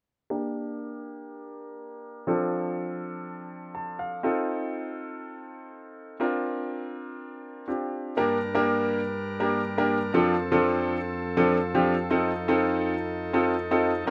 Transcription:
0.30 A#3 D4 G4 A#4
2.27 F3 C4 D4 F4 A4
3.75 A5
3.99 F5
4.23 C4 D#4 F4 A4
6.20 C4 D4 F4 A#4
7.68 C4 D4 F4 G4
8.17 G2 G3 A#3 D4 G4 A#4
8.55 A#3 D4 G4 A#4
9.40 A#3 D4 G4 A#4
9.78 A#3 D4 G4 A#4
10.14 F2 F3 C4 D4 F4 A4
10.52 F3 C4 D4 F4 A4
11.37 F3 C4 D4 F4 A4
11.74 F3 C4 D4 F4 G4
12.11 F3 C4 D#4 F4 A4
12.48 C4 D#4 F4 A4
13.33 C4 D#4 F4 A4
13.71 C4 D#4 F4 A4
14.07 C4 D4 F4

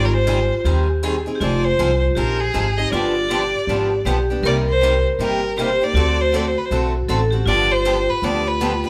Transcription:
Already playing: G#1 D#3 G3 C4 D#4 F4 G#4
0.05 A#4
0.14 C5
0.27 D#3 G3 C4 D#4 G#4
0.64 D#2 D#3 G3 C4 D#4 G4 G#4
1.03 D#3 G3 C4 D#4 G#4
1.26 C4 D#4 G#4
1.35 G4
1.41 F1 F3 C4 D#4 F4 G#4 D5
1.65 C5
1.79 C2 F3 C4 D#4 G#4
2.15 A#1 F3 C4 D#4 G4 G#4 A#4
2.40 G#4
2.54 G#1 F3 C4 D#4 G#4
2.78 C4 D#4 G#4 D#5
2.92 G1 D3 F3 B3 D4 F4 G4 D5
3.29 D3 F3 B3 D4 G4
3.67 G#1 D3 F3 B3 D4 G4
4.05 B1 D3 F3 B3 D4 G4
4.30 B3 D4 G4
4.43 C2 C3 G3 A#3 D#4 G4 A#4 D5
4.69 C5
4.83 C3 G3 A#3 D#4 G4
5.19 G1 C3 G3 A#3 D#4 G4 A#4
5.58 C3 G3 A#3 D#4 G4 C5
5.81 A#3 D#4 G4 D5
5.94 D2 D3 A3 C4 F#4 A4
6.21 C5
6.34 D3 A3 C4 F#4 A4 D5
6.48 C5
6.58 B4
6.66 C5
6.71 B1 D3 A3 C4 F#4 A4
7.08 A1 D3 A3 C4 F#4 A4
7.31 C4 F#4 G4 A4
7.46 G1 D3 F3 B3 D4 F4 G4 D5
7.72 C5
7.85 D3 F3 B3 D4 G4
8.10 B4
8.22 D2 D3 F3 B3 D4 G4 D5
8.47 B4
8.61 D3 F3 B3 D4 G4
8.84 B3 D4 G4 B4

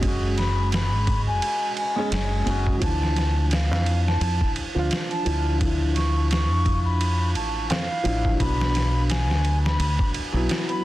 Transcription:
Already playing: F#1 C#4 F#4 G#4
0.00 G#3, kick, ride
0.04 C#4 F#4
0.37 B5, snare, ride
0.72 B5, snare, ride
0.92 G#1
1.07 kick, ride
1.27 G#5
1.42 ride
1.77 G#5, ride
1.96 G#3 C#4 G#4
2.12 F#1 G#5, snare, ride
2.46 F#1 G#3 C#4 F#4, ride
2.67 kick
2.79 D2 F3 D4 A5, kick, ride
2.86 E3
3.03 snare
3.16 snare, ride
3.51 F5, snare, ride
3.71 F2, snare
3.86 ride
4.07 A5, snare
4.21 F2, ride
4.41 kick
4.56 ride
4.75 D2 F3 D4 F4
4.91 snare, ride
5.11 A5, ride
5.25 D2 F3 D4 E4, ride
5.58 F3 D4, kick, ride
5.65 E4
5.96 C#6, snare, ride
6.31 C#6, snare, ride
6.50 F2
6.66 kick, ride
6.85 B5
7.01 ride
7.35 A1 A5, ride
7.70 F2 F5, snare, ride
8.04 A1 F3 D4 E4, ride
8.25 kick
8.37 B1 F#3 B3 B5, kick, ride
8.44 D4
8.61 snare
8.75 snare, ride
9.10 G#5, snare, ride
9.29 D2, snare
9.45 ride
9.64 B5, snare
9.79 D2, ride
9.99 kick
10.14 ride
10.32 B1 F#3 B3 E4
10.49 snare, ride
10.69 B5, ride

